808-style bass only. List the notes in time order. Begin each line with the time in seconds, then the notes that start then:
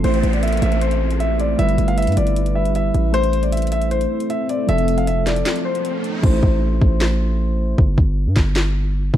0.04 A1
0.23 A1
0.62 A1
1.59 G1
1.78 G1
2.07 G2
2.17 G1
2.94 A1
4.69 F1
6.23 A1
6.43 A1
6.82 A1
7.78 G1
7.98 G1
8.27 G2
8.36 G1
9.14 G1